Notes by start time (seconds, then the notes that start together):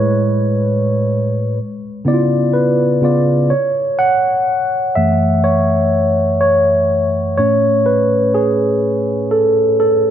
Already playing: A2 G#3 B4 C#5
2.05 C#3 B3 E4 D5
2.13 F4
2.53 B4
3.01 C#3 B3 F4 D5
3.50 C#5
3.99 F#5
4.96 F#2 E3 A3 E5
5.44 C#5
6.41 C#5
7.37 A2 A3 C#4 C#5
7.86 B4
8.34 G#4
9.31 A4
9.80 A4